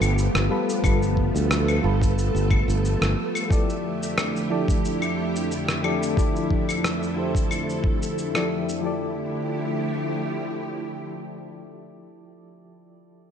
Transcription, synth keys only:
0.00 0.50 G3 medium
0.00 0.50 F4 medium
0.00 0.51 A4 medium
0.00 0.51 B4 medium
0.50 0.80 G3 medium
0.50 0.80 F4 medium
0.50 0.80 A4 medium
0.50 0.80 B4 medium
0.82 1.79 G3 medium
0.82 1.80 F4 medium
0.82 1.80 A4 medium
0.82 1.81 B4 medium
1.82 3.46 G3 medium
1.82 3.46 F4 medium
1.82 3.47 A4 medium
1.82 3.47 B4 medium
3.49 4.46 F3 medium
3.49 4.46 E4 medium
3.49 4.47 G4 medium
3.49 4.47 A4 medium
3.49 4.48 D5 medium
4.50 4.66 F3 medium
4.50 4.66 E4 medium
4.50 4.66 G4 medium
4.50 4.66 A4 medium
4.50 4.66 D5 medium
5.83 6.13 F3 medium
5.83 6.13 E4 medium
5.83 6.13 G4 medium
5.83 6.14 A4 medium
5.83 6.14 D5 loud
6.15 7.12 F3 medium
6.15 7.13 E4 medium
6.15 7.13 G4 medium
6.15 7.14 A4 medium
6.15 7.14 D5 medium
7.15 8.30 F3 medium
7.15 8.31 E4 medium
7.15 8.31 G4 medium
7.15 8.32 A4 medium
7.15 8.32 C5 medium
8.34 8.80 F3 medium
8.34 8.80 E4 medium
8.34 8.80 G4 medium
8.34 8.80 A4 medium
8.34 8.80 D5 medium
8.81 12.71 F3 medium
8.81 12.73 E4 medium
8.81 12.74 G4 medium
8.81 12.75 A4 medium
8.86 12.77 D5 medium

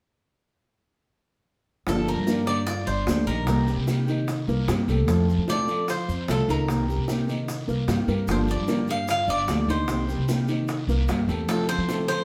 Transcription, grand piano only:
1.88 2.20 F3 medium
1.88 2.21 F4 medium
2.28 2.61 A#3 medium
2.28 2.61 A#4 medium
2.68 2.84 F4 medium
2.68 2.85 F5 medium
2.88 3.21 D4 medium
2.88 3.21 D5 medium
3.28 3.61 D#3 medium
3.28 3.61 D#4 medium
3.68 4.01 G3 medium
3.68 4.01 G4 medium
4.08 4.41 D#3 medium
4.08 4.41 D#4 medium
4.48 4.81 A#3 medium
4.48 4.81 A#4 medium
4.88 5.05 A3 medium
4.88 5.05 A4 medium
5.09 5.42 F3 medium
5.09 5.42 F4 medium
5.49 5.81 A3 medium
5.49 5.82 A4 medium
5.89 6.05 F4 medium
5.89 6.05 F5 medium
6.08 6.41 C4 medium
6.08 6.41 C5 medium
6.48 6.81 D#3 medium
6.48 6.81 D#4 medium
6.88 7.21 G3 medium
6.88 7.21 G4 medium
7.28 7.61 D#3 medium
7.28 7.61 D#4 medium
7.67 8.01 A#3 medium
7.67 8.01 A#4 medium
8.08 8.24 A#3 medium
8.08 8.25 A#4 medium
8.28 8.61 F3 medium
8.28 8.61 F4 medium
8.68 9.01 A#3 medium
8.68 9.02 A#4 medium
9.08 9.25 F4 medium
9.08 9.25 F5 medium
9.28 9.61 D4 medium
9.28 9.61 D5 medium
9.68 10.01 D#3 medium
9.68 10.01 D#4 medium
10.09 10.41 G3 medium
10.09 10.42 G4 medium
10.48 10.81 D#3 medium
10.48 10.81 D#4 medium
10.89 11.21 A#3 medium
10.89 11.22 A#4 medium
11.28 11.45 A3 medium
11.28 11.45 A4 medium
11.48 11.81 F3 medium
11.48 11.81 F4 medium
11.88 12.21 A3 medium
11.88 12.21 A4 medium

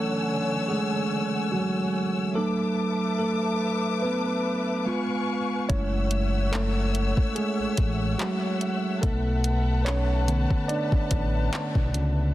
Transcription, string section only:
0.00 2.33 D3 medium
0.00 2.33 C#5 medium
0.00 2.32 F#5 medium
0.00 2.33 G#5 medium
0.00 2.33 E6 medium
2.36 5.66 B4 medium
2.36 4.84 E5 medium
2.36 4.84 A5 medium
2.36 4.84 D6 medium
4.86 5.69 F5 medium
4.86 5.69 G#5 medium
4.86 5.69 C#6 medium
5.69 8.99 C#5 medium
5.69 12.32 E5 medium
5.69 12.32 F#5 medium
5.69 8.99 E6 medium
9.03 12.33 B4 medium
9.03 12.33 A5 medium

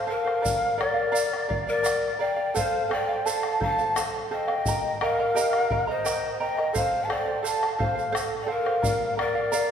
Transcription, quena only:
0.10 0.76 F5 loud
0.81 1.65 D5 loud
1.70 2.18 D5 loud
2.22 2.57 G5 loud
2.56 2.93 F5 loud
2.92 3.27 G5 loud
3.26 3.61 A5 loud
3.62 3.67 A#5 loud
3.66 4.03 A5 loud
4.32 4.98 G5 loud
5.02 5.85 F5 loud
5.89 6.38 D#5 loud
6.42 6.74 G5 medium
6.76 7.06 F5 loud
7.04 7.13 A5 medium
7.11 7.46 G5 medium
7.46 7.78 A5 loud
7.80 8.21 F5 medium
8.44 8.52 G5 medium
8.50 9.18 F5 loud
9.18 9.71 D5 loud

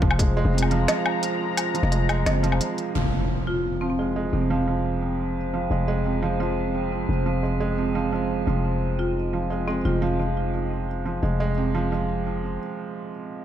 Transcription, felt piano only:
0.00 0.54 C3 loud
0.00 0.02 F3 loud
0.00 0.17 F3 medium
0.00 0.19 G#3 loud
0.19 0.35 G#3 medium
0.37 0.46 G#3 loud
0.54 0.69 C3 loud
0.71 0.87 F3 loud
0.88 1.56 F3 medium
1.74 1.90 F3 medium
1.92 2.07 G#3 medium
2.09 2.19 G#3 loud
2.26 2.42 C3 loud
2.43 2.59 F3 loud
2.61 2.94 F3 medium
2.95 3.62 F3 medium
3.82 3.97 F3 medium
3.99 4.14 G#3 medium
4.16 4.26 G#3 medium
4.33 4.49 C3 medium
4.50 4.66 F3 medium
4.67 5.35 F3 medium
5.54 5.69 F3 medium
5.71 5.86 G#3 medium
5.88 5.98 G#3 medium
6.05 6.21 C3 medium
6.23 6.38 F3 medium
6.40 7.07 F3 medium
7.26 7.42 F3 medium
7.43 7.59 G#3 medium
7.60 7.70 G#3 medium
7.78 7.93 C3 medium
7.95 8.11 F3 medium
8.12 8.45 F3 medium
8.47 9.14 F3 medium
9.33 9.49 F3 medium
9.50 9.66 G#3 medium
9.68 9.77 G#3 medium
9.85 10.00 C3 medium
10.02 10.18 F3 medium
10.19 10.87 F3 medium
11.06 11.21 F3 medium
11.23 11.38 G#3 medium
11.40 11.50 G#3 medium
11.57 11.73 C3 medium
11.75 11.90 F3 medium
11.92 12.59 F3 medium

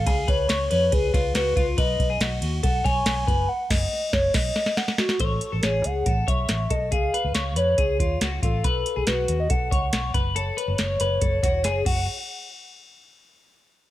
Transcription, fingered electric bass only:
0.07 0.24 C#2 loud
0.28 0.46 C#2 loud
0.50 0.68 C#2 loud
0.72 0.89 F2 medium
0.93 1.10 C#2 loud
1.14 1.31 C#2 loud
1.36 1.53 C#2 loud
1.56 1.74 C#2 medium
1.78 1.96 B1 loud
2.00 2.17 B1 loud
2.21 2.38 B1 loud
2.42 2.59 D#2 loud
2.64 2.81 B1 loud
2.85 3.03 B1 loud
3.06 3.24 B1 loud
3.28 3.45 F#1 loud
3.70 3.85 F#1 loud
4.13 4.28 F#1 loud
4.35 4.49 B1 medium
5.20 5.38 A1 loud
5.53 5.62 A1 medium
5.63 5.81 A1 loud
5.85 6.03 C#2 medium
6.06 6.24 A1 medium
6.28 6.45 B1 medium
6.50 6.67 A1 medium
6.71 6.92 B1 medium
6.92 7.10 C#2 loud
7.25 7.33 C#2 medium
7.35 7.57 C#2 medium
7.57 7.75 F2 medium
7.78 8.00 C#2 medium
8.00 8.18 D#2 medium
8.21 8.39 C#2 medium
8.43 8.61 A1 medium
8.64 8.82 B1 loud
8.97 9.06 B1 loud
9.07 9.25 B1 loud
9.29 9.46 D#2 medium
9.50 9.68 B1 medium
9.72 9.90 C#2 medium
9.93 10.11 B1 medium
10.14 10.50 F#1 loud
10.68 10.77 F#1 loud
10.79 10.97 F#1 medium
11.00 11.18 F#1 medium
11.22 11.40 F#1 loud
11.43 11.65 E1 loud
11.65 11.82 F#1 loud
11.86 12.06 F#1 medium

